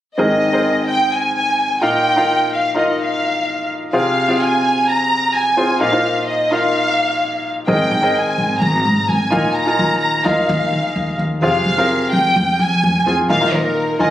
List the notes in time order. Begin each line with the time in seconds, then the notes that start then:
0.18 G#2 D#3 C4 G#4 A#4 D#5
0.53 C4 G#4 A#4 C5
0.89 G5
1.12 G#5
1.35 G#5
1.81 A#2 D#4 F4 A#4 F5 G5
2.16 D#4 F4 A#4 F5
2.54 F5
2.75 D#4 F4 A#4 D#5 F5
2.89 D#5
3.01 F5
3.93 C3 C4 F4 G#4 F5
4.28 C4 F4 G#4 F5
4.40 G#5
4.87 A#5
5.35 G#5
5.57 C4 F4 G#4 C5
5.80 A#2 D#4 F4 A#4 F5
5.92 D#4 F4 A#4 C5
6.29 D#5
6.51 D#4 F4 A#4 F5
7.67 G#1 G#2 D#3 C4 G#4 A#4 D#5 G5
7.91 G#1
8.02 C4 G#4 A#4 D#5
8.15 G#5
8.38 G#1
8.61 G#1 A#5
8.85 G#2
9.07 G#1 G#5
9.31 D#2 A#2 D#4 F4 A#4 F5
9.54 A#5
9.66 D#4 F4 A#4 G#5
9.79 D#2
10.01 A#5
10.24 D#2 D#4 F4 A#4 D#5 F5
10.31 F5
10.49 D#2
10.72 D#3
10.96 D#2
11.19 D#2
11.42 F2 C3 C4 F4 G#4 F5
11.66 F2
11.77 C4 F4 G#4 A#4
12.13 F2 G5
12.36 F2
12.59 F3 G#5
12.84 F2
13.06 F2 C4 F4 G#4 G#5
13.29 D#2 A#2 D#4 F4 A#4 F5
13.41 D#4 F4 A#4 F5
13.53 D#2 A#4
13.99 D#2 D#4 F4 A#4 D#5 G#5